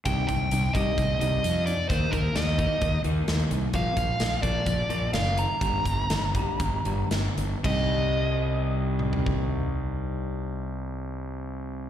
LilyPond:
<<
  \new Staff \with { instrumentName = "Lead electric guitar" } { \time 4/4 \key c \minor \tempo 4 = 125 g''8 g''4 ees''4 ees''4 d''8 | c''8 bes'8 ees''4. r4. | f''8 f''4 d''4. f''8 bes''8~ | bes''2. r4 |
ees''1~ | ees''1 | }
  \new Staff \with { instrumentName = "Clean electric guitar" } { \clef bass \time 4/4 \key c \minor <c ees g>8 <c ees>8 <c ees>8 <c ees g>8 <c ees>8 <c ees g>8 <c ees>8 <c ees>8 | <ees bes ees'>8 <ees bes>8 <ees bes>8 <ees bes ees'>8 <ees bes>8 <ees bes ees'>8 <ees bes>8 <ees bes>8 | <bes, f bes>8 <bes, f>8 <bes, f>8 <bes, f bes>8 <bes, f>8 <bes, f bes>8 <bes, f>8 <bes, f>8 | <g, d g>8 g,8 <g, d>8 <g, d g>8 <g, d>8 <g, d g>8 <g, d>8 <g, d>8 |
<c g c' ees' g'>1~ | <c g c' ees' g'>1 | }
  \new Staff \with { instrumentName = "Fingered electric bass" } { \clef bass \time 4/4 \key c \minor c,8 c,8 c,8 c,8 c,8 c,8 f,4 | ees,8 ees,8 ees,4 ees,8 ees,8 ees,8 c,8 | bes,,8 bes,,8 bes,,8 bes,,8 bes,,8 bes,,8 fis,,4 | g,,8 g,,8 g,,4 g,,8 g,,8 g,,8 g,,8 |
c,1~ | c,1 | }
  \new DrumStaff \with { instrumentName = "Drums" } \drummode { \time 4/4 <hh bd>8 <hh bd>8 hh8 <hh bd>8 <hh bd>8 hh8 hh8 hh8 | <hh bd>8 <hh bd>8 <hh sn>8 <hh bd>8 <hh bd>8 hh8 <hh sn>8 hh8 | <hh bd>8 <hh bd>8 <hh sn>8 <hh bd>8 <hh bd>8 hh8 <hh sn>8 hh8 | <hh bd>8 <hh bd>8 <hh sn>8 <hh bd>8 <hh bd>8 hh8 <hh sn>8 hh8 |
<cymc bd>4 r4 r8 toml16 tomfh16 bd4 | r4 r4 r4 r4 | }
>>